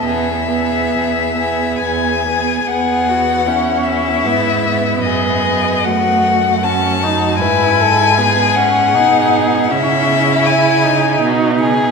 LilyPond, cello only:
\new Staff \with { instrumentName = "Cello" } { \clef bass \time 3/4 \key e \major \tempo 4 = 77 e,4 e,4 e,4 | e,2 gis,4 | fis,2. | gis,2 b,4 |
cis2 b,4 | }